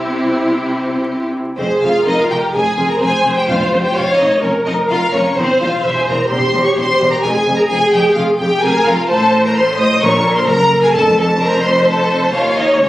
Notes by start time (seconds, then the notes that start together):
Already playing: C2 C3 C4 E4 G4
1.57 F1 F2 C4 G#4 C5
1.82 F1 F2 F4 F5
2.06 F1 F2 D#4 A#4 D#5
2.20 F4 F5
2.30 F1 F2 G4 G5
2.53 F1 F2 G#4 G#5
2.77 F1 F2
2.89 A#4 A#5
3.00 F1 F2 G#4 C5 G#5
3.24 F1 F2
3.36 G4 G5
3.46 F1 F2 F4 F5
3.57 F4 F5
3.72 F1 F2
3.82 G4 G5
3.94 F1 F2 F4 C#5 F5
4.17 F1 F2 D#4 D#5
4.42 F1 F2 C#4 A#4 C#5
4.66 F1 F2 D#4 D#5
4.90 F1 F2 F4 F5
5.13 F1 F2 C#4 C#5
5.37 E1 E2 C4 C5
5.61 E1 E2 F4 F5
5.83 E1 E2 E4 C5 E5
5.96 G#4 G#5
6.06 E1 E2 A#4 A#5
6.29 E1 E2 G4 C5 C6
6.53 E1 E2
6.64 C#5 C#6
6.75 E1 E2 C5 C6
7.01 E1 E2
7.11 A#4 A#5
7.21 F1 F2 G#4 G#5
7.34 G#4 G#5
7.47 F1 F2
7.56 A#4 A#5
7.68 F1 F2 G#4 G#5
7.91 F1 F2 G4 G5
8.14 F1 F2 F4 F5
8.39 F1 F2 G4 G5
8.62 F1 F2 G#4 A#4 G#5
8.85 F1 F2 F4 F5
9.08 A1 A2 A4 C5 A5
9.44 A#4 A#5
9.55 C5 C6
9.78 D#5 D#6
10.02 A#1 A#2 A#4 C#5 C#6
10.36 C5 C6
10.47 F#1 F#2 A#4 A#5
10.82 G#4 G#5
10.93 F1 F2 A4 A5
11.16 A4 A5
11.39 A#4 C5 A#5
11.63 C5 C6
11.86 A4 A5
12.33 D#2 F4 C#5 F5
12.56 D#4 D#5
12.80 C#2 C#4 C#5